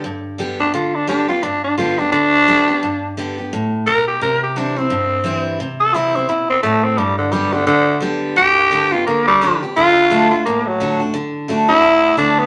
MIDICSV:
0, 0, Header, 1, 3, 480
1, 0, Start_track
1, 0, Key_signature, 1, "major"
1, 0, Tempo, 346620
1, 72, Time_signature, 4, 2, 24, 8
1, 17257, End_track
2, 0, Start_track
2, 0, Title_t, "Tenor saxophone"
2, 0, Program_c, 0, 66
2, 837, Note_on_c, 0, 62, 94
2, 1024, Note_off_c, 0, 62, 0
2, 1032, Note_on_c, 0, 65, 84
2, 1318, Note_on_c, 0, 62, 88
2, 1339, Note_off_c, 0, 65, 0
2, 1497, Note_off_c, 0, 62, 0
2, 1506, Note_on_c, 0, 62, 86
2, 1777, Note_off_c, 0, 62, 0
2, 1785, Note_on_c, 0, 65, 89
2, 1980, Note_on_c, 0, 62, 86
2, 2001, Note_off_c, 0, 65, 0
2, 2264, Note_off_c, 0, 62, 0
2, 2273, Note_on_c, 0, 62, 84
2, 2451, Note_off_c, 0, 62, 0
2, 2460, Note_on_c, 0, 65, 81
2, 2749, Note_on_c, 0, 62, 90
2, 2770, Note_off_c, 0, 65, 0
2, 2929, Note_off_c, 0, 62, 0
2, 2937, Note_on_c, 0, 62, 115
2, 4345, Note_off_c, 0, 62, 0
2, 5357, Note_on_c, 0, 70, 107
2, 5635, Note_off_c, 0, 70, 0
2, 5647, Note_on_c, 0, 67, 85
2, 5835, Note_off_c, 0, 67, 0
2, 5849, Note_on_c, 0, 70, 89
2, 6121, Note_off_c, 0, 70, 0
2, 6142, Note_on_c, 0, 67, 69
2, 6337, Note_on_c, 0, 62, 82
2, 6358, Note_off_c, 0, 67, 0
2, 6615, Note_on_c, 0, 60, 101
2, 6636, Note_off_c, 0, 62, 0
2, 7542, Note_off_c, 0, 60, 0
2, 8032, Note_on_c, 0, 69, 93
2, 8235, Note_on_c, 0, 64, 87
2, 8256, Note_off_c, 0, 69, 0
2, 8529, Note_on_c, 0, 60, 94
2, 8550, Note_off_c, 0, 64, 0
2, 8701, Note_off_c, 0, 60, 0
2, 8709, Note_on_c, 0, 64, 81
2, 8991, Note_off_c, 0, 64, 0
2, 8999, Note_on_c, 0, 60, 98
2, 9170, Note_off_c, 0, 60, 0
2, 9178, Note_on_c, 0, 57, 95
2, 9470, Note_on_c, 0, 60, 87
2, 9491, Note_off_c, 0, 57, 0
2, 9662, Note_on_c, 0, 55, 92
2, 9683, Note_off_c, 0, 60, 0
2, 9933, Note_off_c, 0, 55, 0
2, 9941, Note_on_c, 0, 50, 82
2, 10141, Note_on_c, 0, 55, 87
2, 10162, Note_off_c, 0, 50, 0
2, 10429, Note_on_c, 0, 50, 99
2, 10449, Note_off_c, 0, 55, 0
2, 10603, Note_off_c, 0, 50, 0
2, 10611, Note_on_c, 0, 50, 109
2, 11090, Note_off_c, 0, 50, 0
2, 11588, Note_on_c, 0, 67, 110
2, 12354, Note_on_c, 0, 65, 96
2, 12375, Note_off_c, 0, 67, 0
2, 12547, Note_off_c, 0, 65, 0
2, 12555, Note_on_c, 0, 58, 92
2, 12831, Note_off_c, 0, 58, 0
2, 12844, Note_on_c, 0, 55, 106
2, 13307, Note_off_c, 0, 55, 0
2, 13520, Note_on_c, 0, 65, 125
2, 14258, Note_off_c, 0, 65, 0
2, 14278, Note_on_c, 0, 65, 90
2, 14467, Note_off_c, 0, 65, 0
2, 14478, Note_on_c, 0, 58, 88
2, 14773, Note_on_c, 0, 54, 99
2, 14794, Note_off_c, 0, 58, 0
2, 15230, Note_off_c, 0, 54, 0
2, 16187, Note_on_c, 0, 64, 126
2, 16845, Note_off_c, 0, 64, 0
2, 16865, Note_on_c, 0, 62, 95
2, 17162, Note_on_c, 0, 59, 92
2, 17182, Note_off_c, 0, 62, 0
2, 17257, Note_off_c, 0, 59, 0
2, 17257, End_track
3, 0, Start_track
3, 0, Title_t, "Steel-string acoustic guitar"
3, 0, Program_c, 1, 25
3, 55, Note_on_c, 1, 43, 84
3, 530, Note_on_c, 1, 50, 83
3, 541, Note_on_c, 1, 55, 89
3, 549, Note_on_c, 1, 59, 89
3, 551, Note_on_c, 1, 67, 96
3, 808, Note_off_c, 1, 67, 0
3, 815, Note_off_c, 1, 50, 0
3, 821, Note_off_c, 1, 55, 0
3, 825, Note_off_c, 1, 59, 0
3, 825, Note_on_c, 1, 67, 54
3, 852, Note_on_c, 1, 59, 46
3, 986, Note_off_c, 1, 43, 0
3, 1019, Note_off_c, 1, 67, 0
3, 1020, Note_on_c, 1, 50, 95
3, 1033, Note_off_c, 1, 59, 0
3, 1470, Note_off_c, 1, 50, 0
3, 1487, Note_on_c, 1, 50, 94
3, 1493, Note_on_c, 1, 55, 86
3, 1505, Note_on_c, 1, 59, 94
3, 1511, Note_on_c, 1, 67, 100
3, 1762, Note_off_c, 1, 67, 0
3, 1775, Note_off_c, 1, 50, 0
3, 1778, Note_off_c, 1, 55, 0
3, 1779, Note_on_c, 1, 67, 60
3, 1784, Note_off_c, 1, 59, 0
3, 1801, Note_on_c, 1, 59, 43
3, 1977, Note_off_c, 1, 67, 0
3, 1979, Note_on_c, 1, 43, 96
3, 1988, Note_off_c, 1, 59, 0
3, 2459, Note_on_c, 1, 50, 86
3, 2471, Note_on_c, 1, 55, 93
3, 2475, Note_on_c, 1, 59, 85
3, 2488, Note_on_c, 1, 67, 88
3, 2733, Note_off_c, 1, 67, 0
3, 2741, Note_off_c, 1, 50, 0
3, 2748, Note_off_c, 1, 55, 0
3, 2749, Note_on_c, 1, 67, 55
3, 2750, Note_off_c, 1, 59, 0
3, 2777, Note_on_c, 1, 59, 49
3, 2909, Note_off_c, 1, 43, 0
3, 2941, Note_on_c, 1, 50, 89
3, 2943, Note_off_c, 1, 67, 0
3, 2957, Note_off_c, 1, 59, 0
3, 3411, Note_off_c, 1, 50, 0
3, 3428, Note_on_c, 1, 50, 89
3, 3435, Note_on_c, 1, 55, 97
3, 3442, Note_on_c, 1, 59, 87
3, 3451, Note_on_c, 1, 67, 106
3, 3692, Note_off_c, 1, 67, 0
3, 3706, Note_off_c, 1, 50, 0
3, 3708, Note_on_c, 1, 67, 60
3, 3710, Note_off_c, 1, 55, 0
3, 3713, Note_off_c, 1, 59, 0
3, 3737, Note_on_c, 1, 59, 51
3, 3903, Note_off_c, 1, 67, 0
3, 3916, Note_on_c, 1, 43, 83
3, 3917, Note_off_c, 1, 59, 0
3, 4392, Note_on_c, 1, 50, 84
3, 4398, Note_on_c, 1, 55, 92
3, 4409, Note_on_c, 1, 59, 89
3, 4419, Note_on_c, 1, 67, 106
3, 4664, Note_off_c, 1, 67, 0
3, 4669, Note_off_c, 1, 50, 0
3, 4672, Note_off_c, 1, 55, 0
3, 4678, Note_off_c, 1, 59, 0
3, 4680, Note_on_c, 1, 67, 55
3, 4705, Note_on_c, 1, 59, 42
3, 4839, Note_off_c, 1, 43, 0
3, 4870, Note_off_c, 1, 67, 0
3, 4882, Note_off_c, 1, 59, 0
3, 4886, Note_on_c, 1, 45, 94
3, 5344, Note_off_c, 1, 45, 0
3, 5354, Note_on_c, 1, 47, 84
3, 5818, Note_off_c, 1, 47, 0
3, 5836, Note_on_c, 1, 48, 91
3, 6315, Note_on_c, 1, 52, 91
3, 6322, Note_on_c, 1, 55, 87
3, 6337, Note_on_c, 1, 60, 100
3, 6342, Note_on_c, 1, 64, 80
3, 6581, Note_off_c, 1, 64, 0
3, 6591, Note_off_c, 1, 52, 0
3, 6595, Note_off_c, 1, 55, 0
3, 6597, Note_on_c, 1, 64, 53
3, 6602, Note_off_c, 1, 60, 0
3, 6627, Note_on_c, 1, 60, 49
3, 6759, Note_off_c, 1, 48, 0
3, 6788, Note_on_c, 1, 43, 90
3, 6789, Note_off_c, 1, 64, 0
3, 6804, Note_off_c, 1, 60, 0
3, 7253, Note_on_c, 1, 52, 85
3, 7265, Note_on_c, 1, 55, 89
3, 7279, Note_on_c, 1, 60, 97
3, 7288, Note_on_c, 1, 64, 102
3, 7716, Note_off_c, 1, 43, 0
3, 7727, Note_off_c, 1, 52, 0
3, 7733, Note_off_c, 1, 55, 0
3, 7740, Note_off_c, 1, 60, 0
3, 7745, Note_off_c, 1, 64, 0
3, 7754, Note_on_c, 1, 48, 86
3, 8229, Note_on_c, 1, 52, 85
3, 8239, Note_on_c, 1, 55, 94
3, 8248, Note_on_c, 1, 60, 97
3, 8258, Note_on_c, 1, 64, 94
3, 8505, Note_off_c, 1, 64, 0
3, 8508, Note_off_c, 1, 52, 0
3, 8513, Note_off_c, 1, 55, 0
3, 8518, Note_off_c, 1, 60, 0
3, 8521, Note_on_c, 1, 64, 56
3, 8545, Note_on_c, 1, 60, 48
3, 8678, Note_off_c, 1, 48, 0
3, 8707, Note_on_c, 1, 47, 81
3, 8711, Note_off_c, 1, 64, 0
3, 8722, Note_off_c, 1, 60, 0
3, 9174, Note_off_c, 1, 47, 0
3, 9184, Note_on_c, 1, 45, 94
3, 9652, Note_off_c, 1, 45, 0
3, 9667, Note_on_c, 1, 43, 95
3, 10132, Note_on_c, 1, 50, 84
3, 10145, Note_on_c, 1, 55, 99
3, 10146, Note_on_c, 1, 59, 93
3, 10161, Note_on_c, 1, 67, 90
3, 10405, Note_off_c, 1, 67, 0
3, 10419, Note_off_c, 1, 50, 0
3, 10421, Note_on_c, 1, 67, 56
3, 10425, Note_off_c, 1, 55, 0
3, 10425, Note_off_c, 1, 59, 0
3, 10454, Note_on_c, 1, 59, 52
3, 10593, Note_off_c, 1, 43, 0
3, 10618, Note_on_c, 1, 50, 93
3, 10620, Note_off_c, 1, 67, 0
3, 10636, Note_off_c, 1, 59, 0
3, 11068, Note_off_c, 1, 50, 0
3, 11085, Note_on_c, 1, 50, 98
3, 11104, Note_on_c, 1, 55, 96
3, 11110, Note_on_c, 1, 59, 90
3, 11111, Note_on_c, 1, 67, 102
3, 11561, Note_off_c, 1, 50, 0
3, 11571, Note_off_c, 1, 55, 0
3, 11574, Note_off_c, 1, 59, 0
3, 11574, Note_off_c, 1, 67, 0
3, 11579, Note_on_c, 1, 43, 88
3, 12057, Note_on_c, 1, 50, 94
3, 12067, Note_on_c, 1, 55, 91
3, 12072, Note_on_c, 1, 59, 97
3, 12085, Note_on_c, 1, 67, 94
3, 12339, Note_off_c, 1, 67, 0
3, 12340, Note_off_c, 1, 50, 0
3, 12345, Note_off_c, 1, 55, 0
3, 12347, Note_off_c, 1, 59, 0
3, 12355, Note_on_c, 1, 67, 53
3, 12382, Note_on_c, 1, 59, 51
3, 12508, Note_off_c, 1, 43, 0
3, 12545, Note_off_c, 1, 67, 0
3, 12559, Note_off_c, 1, 59, 0
3, 12566, Note_on_c, 1, 50, 82
3, 13020, Note_off_c, 1, 50, 0
3, 13037, Note_on_c, 1, 50, 90
3, 13046, Note_on_c, 1, 55, 104
3, 13058, Note_on_c, 1, 59, 90
3, 13066, Note_on_c, 1, 67, 106
3, 13309, Note_off_c, 1, 50, 0
3, 13313, Note_off_c, 1, 55, 0
3, 13315, Note_off_c, 1, 67, 0
3, 13319, Note_off_c, 1, 59, 0
3, 13331, Note_on_c, 1, 67, 59
3, 13356, Note_on_c, 1, 59, 51
3, 13512, Note_off_c, 1, 67, 0
3, 13525, Note_off_c, 1, 59, 0
3, 13526, Note_on_c, 1, 50, 96
3, 13973, Note_off_c, 1, 50, 0
3, 13990, Note_on_c, 1, 50, 93
3, 13997, Note_on_c, 1, 57, 91
3, 14007, Note_on_c, 1, 62, 91
3, 14011, Note_on_c, 1, 66, 109
3, 14262, Note_off_c, 1, 66, 0
3, 14265, Note_off_c, 1, 50, 0
3, 14268, Note_off_c, 1, 57, 0
3, 14273, Note_off_c, 1, 62, 0
3, 14279, Note_on_c, 1, 66, 61
3, 14308, Note_on_c, 1, 62, 42
3, 14466, Note_off_c, 1, 66, 0
3, 14480, Note_off_c, 1, 62, 0
3, 14492, Note_on_c, 1, 45, 87
3, 14958, Note_on_c, 1, 50, 85
3, 14966, Note_on_c, 1, 57, 92
3, 14974, Note_on_c, 1, 62, 89
3, 14979, Note_on_c, 1, 66, 102
3, 15211, Note_off_c, 1, 66, 0
3, 15228, Note_off_c, 1, 50, 0
3, 15228, Note_on_c, 1, 66, 56
3, 15232, Note_off_c, 1, 57, 0
3, 15236, Note_off_c, 1, 62, 0
3, 15256, Note_on_c, 1, 62, 50
3, 15402, Note_off_c, 1, 45, 0
3, 15419, Note_off_c, 1, 66, 0
3, 15422, Note_on_c, 1, 50, 94
3, 15433, Note_off_c, 1, 62, 0
3, 15884, Note_off_c, 1, 50, 0
3, 15900, Note_on_c, 1, 50, 84
3, 15910, Note_on_c, 1, 57, 82
3, 15920, Note_on_c, 1, 62, 100
3, 15924, Note_on_c, 1, 66, 92
3, 16160, Note_off_c, 1, 66, 0
3, 16177, Note_on_c, 1, 66, 59
3, 16179, Note_off_c, 1, 50, 0
3, 16183, Note_off_c, 1, 57, 0
3, 16189, Note_off_c, 1, 62, 0
3, 16206, Note_on_c, 1, 62, 55
3, 16373, Note_off_c, 1, 66, 0
3, 16374, Note_on_c, 1, 45, 83
3, 16387, Note_off_c, 1, 62, 0
3, 16853, Note_on_c, 1, 50, 90
3, 16863, Note_on_c, 1, 57, 89
3, 16874, Note_on_c, 1, 62, 82
3, 16882, Note_on_c, 1, 66, 111
3, 17257, Note_off_c, 1, 45, 0
3, 17257, Note_off_c, 1, 50, 0
3, 17257, Note_off_c, 1, 57, 0
3, 17257, Note_off_c, 1, 62, 0
3, 17257, Note_off_c, 1, 66, 0
3, 17257, End_track
0, 0, End_of_file